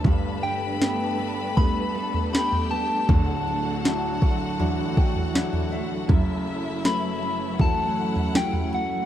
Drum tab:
SD |----o-------o---|----o-------o---|----o-------o---|
FT |o-------o--o-o--|o-------o--o-o--|o-------o--o-o--|
BD |o-------o-------|o-----o---o-----|o-------o-------|